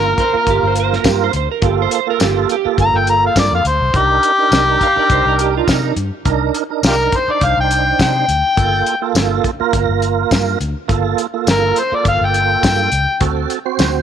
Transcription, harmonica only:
0, 0, Header, 1, 2, 480
1, 0, Start_track
1, 0, Key_signature, -2, "minor"
1, 0, Tempo, 579151
1, 1348, Time_signature, 4, 2, 24, 8
1, 11620, End_track
2, 0, Start_track
2, 0, Title_t, "Harmonica"
2, 0, Program_c, 0, 22
2, 0, Note_on_c, 0, 70, 87
2, 843, Note_off_c, 0, 70, 0
2, 2331, Note_on_c, 0, 82, 89
2, 2466, Note_on_c, 0, 79, 72
2, 2478, Note_off_c, 0, 82, 0
2, 2553, Note_off_c, 0, 79, 0
2, 2569, Note_on_c, 0, 82, 80
2, 2682, Note_off_c, 0, 82, 0
2, 2703, Note_on_c, 0, 77, 66
2, 2792, Note_off_c, 0, 77, 0
2, 2810, Note_on_c, 0, 74, 61
2, 2923, Note_off_c, 0, 74, 0
2, 2941, Note_on_c, 0, 77, 76
2, 3030, Note_off_c, 0, 77, 0
2, 3046, Note_on_c, 0, 72, 72
2, 3290, Note_on_c, 0, 67, 100
2, 3303, Note_off_c, 0, 72, 0
2, 4684, Note_off_c, 0, 67, 0
2, 5696, Note_on_c, 0, 65, 64
2, 5696, Note_on_c, 0, 67, 64
2, 5696, Note_on_c, 0, 70, 91
2, 5752, Note_off_c, 0, 65, 0
2, 5754, Note_off_c, 0, 67, 0
2, 5934, Note_on_c, 0, 72, 78
2, 5947, Note_off_c, 0, 70, 0
2, 6061, Note_on_c, 0, 74, 77
2, 6073, Note_off_c, 0, 72, 0
2, 6170, Note_on_c, 0, 77, 85
2, 6182, Note_off_c, 0, 74, 0
2, 6282, Note_off_c, 0, 77, 0
2, 6301, Note_on_c, 0, 79, 85
2, 6626, Note_off_c, 0, 79, 0
2, 6643, Note_on_c, 0, 79, 94
2, 7565, Note_off_c, 0, 79, 0
2, 9534, Note_on_c, 0, 70, 83
2, 9772, Note_on_c, 0, 72, 74
2, 9784, Note_off_c, 0, 70, 0
2, 9905, Note_on_c, 0, 74, 66
2, 9918, Note_off_c, 0, 72, 0
2, 9993, Note_off_c, 0, 74, 0
2, 10014, Note_on_c, 0, 77, 83
2, 10151, Note_on_c, 0, 79, 74
2, 10163, Note_off_c, 0, 77, 0
2, 10472, Note_off_c, 0, 79, 0
2, 10495, Note_on_c, 0, 79, 78
2, 10947, Note_off_c, 0, 79, 0
2, 11620, End_track
0, 0, End_of_file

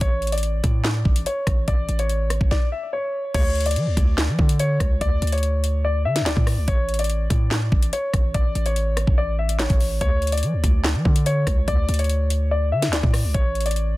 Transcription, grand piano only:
0, 0, Header, 1, 2, 480
1, 0, Start_track
1, 0, Tempo, 416667
1, 13, Time_signature, 4, 2, 24, 8
1, 16096, End_track
2, 0, Start_track
2, 0, Title_t, "Grand piano"
2, 0, Program_c, 0, 0
2, 15, Note_on_c, 0, 73, 100
2, 353, Note_off_c, 0, 73, 0
2, 373, Note_on_c, 0, 74, 80
2, 1407, Note_off_c, 0, 74, 0
2, 1456, Note_on_c, 0, 73, 81
2, 1906, Note_off_c, 0, 73, 0
2, 1933, Note_on_c, 0, 74, 101
2, 2272, Note_off_c, 0, 74, 0
2, 2295, Note_on_c, 0, 73, 81
2, 2858, Note_off_c, 0, 73, 0
2, 2894, Note_on_c, 0, 74, 89
2, 3079, Note_off_c, 0, 74, 0
2, 3134, Note_on_c, 0, 76, 80
2, 3319, Note_off_c, 0, 76, 0
2, 3374, Note_on_c, 0, 73, 78
2, 3825, Note_off_c, 0, 73, 0
2, 3853, Note_on_c, 0, 73, 116
2, 4192, Note_off_c, 0, 73, 0
2, 4216, Note_on_c, 0, 74, 81
2, 5248, Note_off_c, 0, 74, 0
2, 5295, Note_on_c, 0, 73, 85
2, 5745, Note_off_c, 0, 73, 0
2, 5774, Note_on_c, 0, 74, 118
2, 6112, Note_off_c, 0, 74, 0
2, 6134, Note_on_c, 0, 73, 81
2, 6698, Note_off_c, 0, 73, 0
2, 6734, Note_on_c, 0, 74, 83
2, 6918, Note_off_c, 0, 74, 0
2, 6972, Note_on_c, 0, 76, 85
2, 7158, Note_off_c, 0, 76, 0
2, 7216, Note_on_c, 0, 74, 81
2, 7666, Note_off_c, 0, 74, 0
2, 7695, Note_on_c, 0, 73, 100
2, 8033, Note_off_c, 0, 73, 0
2, 8055, Note_on_c, 0, 74, 81
2, 9088, Note_off_c, 0, 74, 0
2, 9134, Note_on_c, 0, 73, 85
2, 9585, Note_off_c, 0, 73, 0
2, 9613, Note_on_c, 0, 74, 107
2, 9951, Note_off_c, 0, 74, 0
2, 9975, Note_on_c, 0, 73, 83
2, 10538, Note_off_c, 0, 73, 0
2, 10573, Note_on_c, 0, 74, 90
2, 10758, Note_off_c, 0, 74, 0
2, 10815, Note_on_c, 0, 76, 80
2, 10999, Note_off_c, 0, 76, 0
2, 11054, Note_on_c, 0, 73, 78
2, 11505, Note_off_c, 0, 73, 0
2, 11533, Note_on_c, 0, 73, 114
2, 11871, Note_off_c, 0, 73, 0
2, 11893, Note_on_c, 0, 74, 82
2, 12927, Note_off_c, 0, 74, 0
2, 12974, Note_on_c, 0, 73, 86
2, 13425, Note_off_c, 0, 73, 0
2, 13454, Note_on_c, 0, 74, 116
2, 13792, Note_off_c, 0, 74, 0
2, 13814, Note_on_c, 0, 73, 83
2, 14377, Note_off_c, 0, 73, 0
2, 14415, Note_on_c, 0, 74, 87
2, 14599, Note_off_c, 0, 74, 0
2, 14654, Note_on_c, 0, 76, 85
2, 14839, Note_off_c, 0, 76, 0
2, 14894, Note_on_c, 0, 74, 81
2, 15345, Note_off_c, 0, 74, 0
2, 15373, Note_on_c, 0, 73, 102
2, 15711, Note_off_c, 0, 73, 0
2, 15733, Note_on_c, 0, 74, 78
2, 16096, Note_off_c, 0, 74, 0
2, 16096, End_track
0, 0, End_of_file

